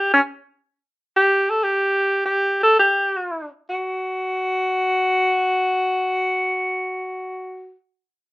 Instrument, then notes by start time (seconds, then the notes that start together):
alto saxophone
Already playing: G4
0.13 C#4
1.16 G4
1.50 A4
1.64 G4
2.25 G4
2.63 A4
2.79 G4
3.70 F#4